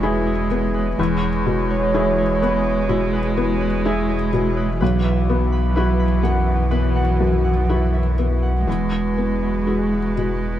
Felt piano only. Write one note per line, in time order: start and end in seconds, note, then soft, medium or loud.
0.00 1.00 B2 medium
0.00 0.51 B3 soft
0.00 0.03 E4 soft
0.00 0.46 E4 soft
0.00 0.03 G#4 medium
0.00 0.47 G#4 medium
0.51 1.27 B3 soft
0.99 2.86 E2 medium
1.46 2.23 B2 medium
1.94 2.38 E4 soft
1.94 2.38 G#4 medium
2.42 3.18 B3 medium
2.89 3.66 B2 medium
3.37 4.14 B3 medium
3.85 4.29 E4 medium
3.85 4.30 G#4 medium
4.33 4.81 B2 medium
4.82 6.68 B1 medium
5.29 6.05 B3 medium
5.77 6.20 E4 soft
5.77 6.20 F#4 soft
6.24 7.00 F#2 soft
6.72 7.49 B3 soft
7.20 7.98 F#2 soft
7.69 8.14 E4 soft
7.69 8.14 F#4 soft
8.19 8.68 B3 soft
8.67 10.60 E2 soft
9.18 9.97 B3 soft
9.67 10.13 F#4 soft
9.67 10.13 G#4 soft
10.17 10.60 B2 soft